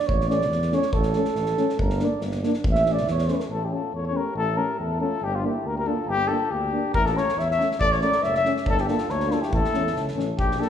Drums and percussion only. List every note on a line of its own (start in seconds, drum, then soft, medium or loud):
0.09 kick medium
0.21 snare soft
0.30 snare soft
0.42 snare soft
0.52 snare soft
0.62 snare soft
0.72 snare soft
0.82 snare soft
0.93 kick medium
1.03 snare soft
1.13 snare soft
1.25 snare soft
1.36 snare soft
1.46 snare soft
1.57 snare soft
1.69 snare soft
1.79 kick medium
1.90 snare soft
1.99 snare soft
2.21 snare soft
2.31 snare soft
2.43 snare soft
2.54 snare soft
2.64 kick loud
2.75 snare soft
2.86 snare soft
2.98 snare soft
3.08 snare soft
3.18 snare soft
3.28 snare soft
3.40 snare soft
6.94 kick medium
7.06 snare soft
7.17 snare soft
7.29 snare soft
7.39 snare soft
7.51 snare soft
7.60 snare soft
7.71 snare soft
7.81 kick medium
7.92 snare soft
8.02 snare soft
8.12 snare soft
8.23 snare soft
8.35 snare soft
8.45 snare soft
8.57 snare soft
8.66 kick medium
8.78 snare soft
8.88 snare soft
8.98 snare soft
9.09 snare soft
9.20 snare soft
9.31 snare soft
9.43 snare soft
9.53 kick medium
9.65 snare soft
9.74 snare soft
9.87 snare soft
9.96 snare soft
10.08 snare soft
10.20 snare soft
10.39 kick medium
10.51 snare soft
10.62 snare soft